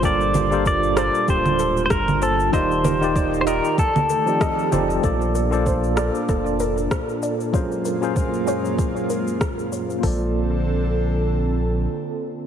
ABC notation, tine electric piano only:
X:1
M:4/4
L:1/16
Q:"Swing 16ths" 1/4=96
K:Bb
V:1 name="Tine electric piano"
[G,DFABc]3 [G,DFABc]3 [G,DFABc] z8 z | [E,EFGd]3 [E,EFGd]3 [E,EFGd] z4 [F,CEGAd]3 [F,CEGAd]2 | [B,FAcd]3 [B,FAcd]3 [B,FAcd] z8 z | [_G,_DF_ABc]3 [G,DFABc]3 [G,DFABc] z8 z |
[B,FAcd]16 |]